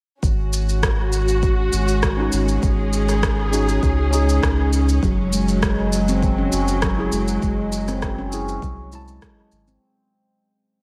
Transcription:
0.23 G#1 G#3 C#4 F#4, kick, shaker
0.53 shaker
0.69 shaker
0.83 kick, cross-stick, shaker
1.13 shaker
1.28 shaker
1.43 kick, shaker
1.73 G#1, shaker
1.88 shaker
2.03 kick, cross-stick, shaker
2.17 C#4 D#4
2.21 F#4
2.32 G#1, shaker
2.49 shaker
2.63 G#1 G#4, kick, shaker
2.93 shaker
3.09 cross-stick, shaker
3.23 kick, cross-stick, shaker
3.52 C#4 D#4 F#4, shaker
3.69 shaker
3.83 C#2, kick, shaker
4.11 C#4 D#4, shaker
4.15 G#4
4.29 shaker
4.43 C#2, kick, cross-stick, shaker
4.73 shaker
4.89 shaker
5.02 F#1 F#3 G#3, kick, shaker
5.33 G#3, shaker
5.48 shaker
5.63 kick, cross-stick, shaker
5.93 shaker
6.08 C4, shaker
6.23 kick, shaker
6.38 C#4
6.53 F#1, shaker
6.68 shaker
6.82 F#3, kick, cross-stick, shaker
6.98 E4 G#4
7.12 F#1 G#3, shaker
7.28 shaker
7.42 F#1 G#3, kick, shaker
7.73 shaker
7.88 C4, cross-stick, shaker
8.02 kick, cross-stick, shaker
8.18 C#4
8.33 E4 G#4, shaker
8.49 shaker
8.62 C2 F#3, kick, shaker
8.92 G#3 E4 A5, shaker
9.08 shaker
9.22 G#3, kick, cross-stick, shaker
9.52 G#1, shaker
9.68 C4, shaker

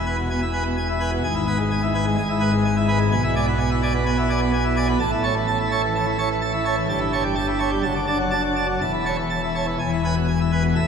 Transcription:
Already playing: E1 E2
0.06 B4 G#5
0.18 B2
0.30 B2 G#5
0.42 E4
0.53 B4 G#5
0.65 B2
0.77 G#5
0.89 E4
1.00 B4 G#5
1.12 B2
1.24 G#1 G#2 G#5
1.36 E4
1.47 B4 G#5
1.60 G#3
1.71 G#5
1.83 E4
1.95 B4 G#5
2.06 G#3
2.18 G#1 G#2 G#5
2.30 E4
2.40 B4 G#5
2.52 G#3
2.65 G#5
2.77 E4
2.88 B4 G#5
3.00 G#3
3.11 B1 B2 G#5
3.24 E4
3.36 D5 G#5
3.47 B3
3.59 G#5
3.71 E4
3.83 D5 G#5
3.94 B3
4.06 B3 G#5
4.18 E4
4.30 D5 G#5
4.41 B3
4.53 G#5
4.65 E4
4.76 D5 G#5
4.89 B3
5.00 A1 A2 A5
5.12 E4
5.23 C#5 A5
5.36 E3
5.47 A5
5.60 E4
5.71 C#5 A5
5.84 E3
5.95 E3 A5
6.06 E4
6.18 C#5 A5
6.30 E3
6.41 A5
6.53 E4
6.65 C#5 A5
6.76 E3
6.89 G1 G2 A5
7.00 E4
7.13 C#5 A5
7.24 G3
7.36 A5
7.48 E4
7.59 C#5 A5
7.71 G3
7.83 F#1 F#2 A5
7.96 D4
8.07 D4 D5 A5
8.20 F#3
8.31 D4 A5
8.44 D4
8.56 D5 A5
8.69 F#3
8.81 E1 E2 A5
8.93 E4
9.06 C#5 A5
9.19 E3
9.30 A5
9.43 E4
9.55 C#5 A5
9.67 E3
9.79 E1 E2 G#5
9.93 E4
10.05 B4 G#5
10.16 B2
10.28 G#5
10.41 E4
10.52 B4 G#5
10.64 B2
10.76 A1 A2 E5

